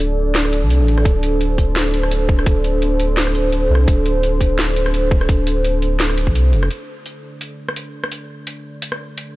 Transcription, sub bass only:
0.00 0.64 D1 medium
0.62 0.81 C2 medium
0.80 1.04 A1 medium
1.05 2.46 D1 medium
2.46 3.34 D1 medium
3.34 3.69 D1 medium
3.70 3.87 C2 medium
3.88 5.28 D1 loud
5.29 6.28 D1 loud
6.27 6.54 C2 medium
6.53 6.69 F1 loud

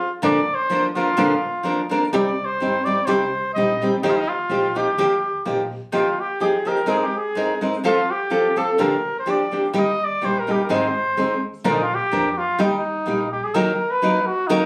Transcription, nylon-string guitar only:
0.22 0.38 A#2 medium
0.22 0.38 D3 medium
0.22 0.38 F3 medium
0.22 0.38 A#3 medium
0.22 0.38 D4 medium
0.22 0.38 A#4 medium
0.70 0.85 F3 medium
0.70 0.86 A#3 medium
0.70 0.86 D4 medium
0.70 0.87 A#4 medium
0.95 1.09 F3 soft
0.95 1.09 A#3 soft
0.95 1.09 D4 soft
0.95 1.09 A#4 medium
1.17 1.33 A#2 medium
1.17 1.33 D3 medium
1.17 1.33 F3 medium
1.17 1.33 A#3 medium
1.17 1.33 D4 medium
1.17 1.33 A#4 medium
1.63 1.80 F3 soft
1.63 1.80 A#3 soft
1.63 1.80 D4 medium
1.63 1.81 A#4 medium
1.89 2.03 F3 soft
1.89 2.04 A#3 medium
1.89 2.04 D4 soft
1.89 2.04 A#4 medium
2.13 2.28 C3 medium
2.13 2.28 G3 medium
2.13 2.29 C4 medium
2.13 2.29 D#4 medium
2.13 2.29 G4 medium
2.60 2.76 G3 soft
2.60 2.76 C4 soft
2.60 2.76 D#4 soft
2.60 2.77 G4 medium
2.86 2.99 G3 soft
2.86 2.99 C4 soft
2.86 3.00 D#4 soft
2.86 3.00 G4 soft
3.07 3.23 C3 medium
3.07 3.23 G3 medium
3.07 3.23 C4 medium
3.07 3.23 D#4 medium
3.07 3.24 G4 medium
3.56 3.71 G3 soft
3.56 3.72 C4 medium
3.56 3.72 D#4 medium
3.56 3.72 G4 medium
3.82 3.94 G3 soft
3.82 3.95 C4 medium
3.82 3.95 D#4 medium
3.82 3.95 G4 medium
4.03 4.18 D#3 medium
4.03 4.18 F3 medium
4.03 4.18 A#3 medium
4.03 4.18 D#4 medium
4.03 4.19 G4 medium
4.50 4.65 F3 soft
4.50 4.66 A#3 medium
4.50 4.66 D#4 medium
4.50 4.66 G4 medium
4.75 4.88 F3 soft
4.75 4.89 A#3 soft
4.75 4.89 D#4 medium
4.75 4.89 G4 medium
4.98 5.13 D#3 medium
4.98 5.13 F3 medium
4.98 5.13 A#3 medium
4.98 5.14 D#4 medium
4.98 5.14 G4 medium
5.45 5.61 F3 medium
5.45 5.61 A#3 medium
5.45 5.61 D#4 medium
5.45 5.62 G4 medium
5.92 6.08 D#3 medium
5.92 6.08 F3 medium
5.92 6.08 A#3 medium
5.92 6.08 D#4 medium
5.92 6.09 G4 medium
6.40 6.56 F3 soft
6.40 6.56 A#3 soft
6.40 6.56 D#4 soft
6.40 6.56 G4 medium
6.65 6.79 F3 soft
6.65 6.79 A#3 soft
6.65 6.80 D#4 soft
6.65 6.80 G4 soft
6.86 7.03 G#3 medium
6.86 7.03 C4 medium
6.86 7.03 D#4 medium
6.86 7.04 A#4 medium
7.35 7.51 G#3 soft
7.35 7.52 C4 soft
7.35 7.52 D#4 soft
7.35 7.52 A#4 medium
7.61 7.75 G#3 soft
7.61 7.75 C4 soft
7.61 7.75 D#4 soft
7.61 7.75 A#4 medium
7.84 7.99 F3 medium
7.84 7.99 C4 medium
7.84 8.00 F4 medium
7.84 8.00 A4 medium
8.30 8.46 F3 soft
8.30 8.46 C4 soft
8.30 8.47 F4 medium
8.30 8.47 A4 soft
8.56 8.70 F3 soft
8.56 8.70 C4 soft
8.56 8.70 F4 medium
8.56 8.70 A4 soft
8.78 8.94 A#2 medium
8.78 8.94 D3 medium
8.78 8.94 F3 medium
8.78 8.94 A#3 medium
8.78 8.94 D4 medium
8.78 8.95 G4 medium
9.26 9.42 F3 medium
9.26 9.42 A#3 medium
9.26 9.42 D4 soft
9.26 9.42 G4 medium
9.51 9.65 F3 soft
9.51 9.65 A#3 soft
9.51 9.66 D4 soft
9.51 9.66 G4 soft
9.73 9.89 D#3 medium
9.73 9.90 G3 medium
9.73 9.90 A#3 medium
9.73 9.90 D#4 medium
9.73 9.90 G4 medium
10.21 10.37 G3 soft
10.21 10.38 A#3 medium
10.21 10.38 D#4 soft
10.21 10.38 G4 medium
10.47 10.61 G3 medium
10.47 10.61 A#3 soft
10.47 10.61 D#4 medium
10.47 10.62 G4 medium
10.69 10.85 G#2 medium
10.69 10.86 D#3 medium
10.69 10.85 G#3 medium
10.69 10.85 C4 medium
10.69 10.86 D#4 medium
10.69 10.86 G#4 medium
11.17 11.33 G#3 soft
11.17 11.33 C4 medium
11.17 11.33 D#4 medium
11.17 11.34 G#4 medium
11.64 11.80 A#2 medium
11.64 11.80 D3 medium
11.64 11.80 F3 medium
11.64 11.80 A#3 medium
11.64 11.81 D4 medium
11.64 11.81 A#4 medium
12.11 12.27 F3 soft
12.11 12.28 A#3 soft
12.11 12.28 D4 medium
12.11 12.28 A#4 medium
12.59 12.75 D#3 medium
12.59 12.75 G3 medium
12.59 12.75 A#3 medium
12.59 12.75 D#4 medium
12.59 12.75 G4 medium
13.06 13.22 G3 soft
13.06 13.23 A#3 medium
13.06 13.23 D#4 soft
13.06 13.23 G4 soft
13.54 13.70 D#3 medium
13.54 13.70 F#3 medium
13.54 13.71 A#3 medium
13.54 13.71 D#4 medium
13.54 13.71 A#4 medium
14.02 14.18 F#3 medium
14.02 14.18 A#3 medium
14.02 14.18 D#4 medium
14.02 14.19 A#4 medium
14.49 14.65 D#3 medium
14.49 14.65 F#3 medium
14.49 14.66 A#3 medium
14.49 14.66 D#4 medium
14.49 14.66 A#4 medium

